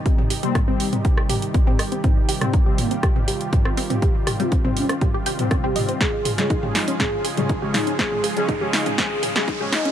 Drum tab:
HH |x-oxx-oxx-oxx-ox|x-oxx-oxx-oxx-ox|x-oxx-oxx-oxx-ox|x-oxx-oxx-oxx-ox|
SD |----r----r----r-|---r----r----r--|--r----r----r---|o--o--o-o-----o-|
T2 |-o--o--o--o--o--|o--o--o--o--o--o|--o--o--o--o--o-|--o--o--o--o--o-|
BD |o---o---o---o---|o---o---o---o---|o---o---o---o---|o---o---o---o---|

HH |x-oxx-oxx-oxx-ox|
SD |o-----o-o--o--o-|
T2 |-o--o--o--o--o--|
BD |o---o---o---o---|